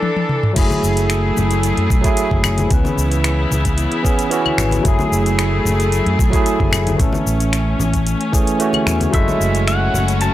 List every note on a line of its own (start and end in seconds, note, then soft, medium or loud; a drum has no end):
0.00 0.56 E3 medium
0.00 0.56 D4 medium
0.00 0.56 A4 medium
0.00 high tom medium
0.16 high tom medium
0.29 mid tom medium
0.43 mid tom medium
0.53 0.66 F#1 medium
0.53 1.99 F#3 medium
0.53 2.00 A3 medium
0.53 2.01 E4 medium
0.53 kick loud
0.53 closed hi-hat medium
0.53 crash loud
0.53 shaker soft
0.57 2.69 F#3 medium
0.57 2.69 A3 medium
0.57 2.69 E4 medium
0.57 2.69 G#4 medium
0.57 2.02 G#4 loud
0.71 high conga medium
0.71 shaker soft
0.83 1.31 F#1 medium
0.83 shaker medium
0.97 closed hi-hat soft
0.97 shaker soft
1.10 finger snap medium
1.10 closed hi-hat medium
1.10 shaker soft
1.37 1.71 F#1 medium
1.37 low conga loud
1.37 shaker medium
1.51 closed hi-hat soft
1.51 shaker soft
1.63 closed hi-hat medium
1.63 shaker soft
1.77 1.86 F#2 loud
1.77 closed hi-hat soft
1.90 2.00 B1 medium
1.90 kick loud
1.90 shaker medium
2.02 2.66 F#3 medium
2.02 2.67 A3 medium
2.02 2.68 E4 medium
2.02 kick loud
2.02 closed hi-hat soft
2.02 shaker soft
2.07 2.69 G#4 loud
2.17 closed hi-hat medium
2.17 shaker soft
2.31 2.65 F#1 medium
2.31 kick medium
2.31 high conga medium
2.44 finger snap medium
2.44 low conga medium
2.44 claves medium
2.44 shaker medium
2.58 closed hi-hat soft
2.58 high conga medium
2.58 shaker soft
2.68 2.81 C#2 loud
2.68 4.83 C#3 medium
2.68 4.00 E3 medium
2.68 4.01 B3 medium
2.68 4.83 B3 medium
2.68 4.02 C#4 medium
2.68 4.83 E4 medium
2.68 kick loud
2.68 closed hi-hat medium
2.68 shaker soft
2.74 4.03 B4 medium
2.85 high conga medium
2.85 shaker soft
2.97 3.45 C#2 medium
2.97 shaker medium
3.12 closed hi-hat soft
3.12 shaker soft
3.24 finger snap medium
3.24 closed hi-hat medium
3.24 shaker soft
3.51 3.85 C#2 medium
3.51 low conga medium
3.51 shaker medium
3.65 kick medium
3.65 closed hi-hat soft
3.65 shaker soft
3.78 closed hi-hat soft
3.78 shaker soft
3.92 closed hi-hat soft
4.03 4.28 E3 medium
4.03 4.28 B3 medium
4.03 4.29 C#4 medium
4.03 4.29 G#4 medium
4.03 kick loud
4.03 shaker medium
4.19 closed hi-hat soft
4.19 shaker soft
4.30 4.46 E3 medium
4.30 4.46 B3 medium
4.30 4.47 C#4 medium
4.30 4.47 F#4 medium
4.30 closed hi-hat medium
4.30 shaker soft
4.46 high conga medium
4.46 claves medium
4.58 4.77 G#1 medium
4.58 finger snap medium
4.58 low conga medium
4.58 shaker medium
4.71 closed hi-hat soft
4.71 high conga medium
4.71 shaker soft
4.82 4.95 F#1 medium
4.82 6.28 F#3 medium
4.82 6.29 A3 medium
4.82 6.30 E4 medium
4.82 kick loud
4.82 closed hi-hat medium
4.86 6.98 F#3 medium
4.86 6.98 A3 medium
4.86 6.98 E4 medium
4.86 6.98 G#4 medium
4.86 6.31 G#4 loud
4.86 shaker soft
4.99 high conga medium
4.99 shaker soft
5.12 5.59 F#1 medium
5.12 shaker medium
5.26 closed hi-hat soft
5.26 shaker soft
5.39 finger snap medium
5.39 closed hi-hat medium
5.39 shaker soft
5.65 5.99 F#1 medium
5.65 low conga loud
5.65 shaker medium
5.80 closed hi-hat soft
5.80 shaker soft
5.92 closed hi-hat soft
5.92 shaker soft
6.06 6.15 F#2 loud
6.06 closed hi-hat soft
6.19 6.29 B1 medium
6.19 kick loud
6.19 shaker medium
6.30 6.95 F#3 medium
6.30 6.96 A3 medium
6.30 6.97 E4 medium
6.30 kick loud
6.30 closed hi-hat soft
6.34 6.98 G#4 loud
6.34 shaker soft
6.46 closed hi-hat medium
6.46 shaker soft
6.60 6.93 F#1 medium
6.60 kick medium
6.60 high conga medium
6.71 finger snap medium
6.71 low conga medium
6.71 claves medium
6.71 shaker medium
6.87 closed hi-hat soft
6.87 high conga medium
6.87 shaker soft
6.96 7.09 A1 loud
6.96 8.29 E3 medium
6.96 8.30 A3 medium
6.96 9.12 A3 medium
6.96 9.12 C#4 medium
6.96 8.31 C#4 medium
6.96 kick loud
6.96 closed hi-hat medium
7.01 8.32 A4 medium
7.01 shaker soft
7.13 high conga medium
7.13 shaker soft
7.26 7.73 A1 medium
7.26 shaker medium
7.40 closed hi-hat soft
7.40 shaker soft
7.53 finger snap medium
7.53 closed hi-hat medium
7.53 shaker soft
7.79 8.14 A1 medium
7.79 low conga loud
7.79 shaker medium
7.93 kick medium
7.93 closed hi-hat soft
7.93 shaker soft
8.07 closed hi-hat soft
8.07 shaker soft
8.21 closed hi-hat soft
8.32 8.56 E3 medium
8.32 8.57 A3 medium
8.32 8.57 C#4 medium
8.32 8.58 G#4 medium
8.32 kick loud
8.32 shaker medium
8.47 closed hi-hat soft
8.47 shaker soft
8.59 8.74 E3 medium
8.59 8.75 A3 medium
8.59 8.75 C#4 medium
8.59 8.76 F#4 medium
8.59 closed hi-hat medium
8.59 shaker soft
8.73 closed hi-hat soft
8.73 high conga medium
8.73 claves medium
8.87 9.06 E2 medium
8.87 finger snap medium
8.87 low conga medium
8.87 shaker medium
9.00 closed hi-hat soft
9.00 high conga medium
9.00 shaker soft
9.10 9.23 F#1 medium
9.10 10.34 F#3 medium
9.10 10.34 A3 medium
9.10 10.34 C#4 medium
9.10 10.34 E4 medium
9.10 10.34 F#4 medium
9.10 9.67 E5 medium
9.10 kick loud
9.10 closed hi-hat medium
9.14 10.34 G#3 loud
9.14 10.34 E4 medium
9.14 shaker soft
9.28 high conga medium
9.28 shaker soft
9.40 9.88 F#1 medium
9.40 shaker medium
9.55 closed hi-hat soft
9.55 shaker soft
9.68 10.17 F#5 medium
9.68 finger snap medium
9.68 closed hi-hat soft
9.68 shaker soft
9.94 10.28 F#1 medium
9.94 low conga medium
9.94 shaker medium
10.08 closed hi-hat soft
10.08 shaker soft
10.21 10.34 A5 loud
10.21 closed hi-hat medium
10.21 shaker soft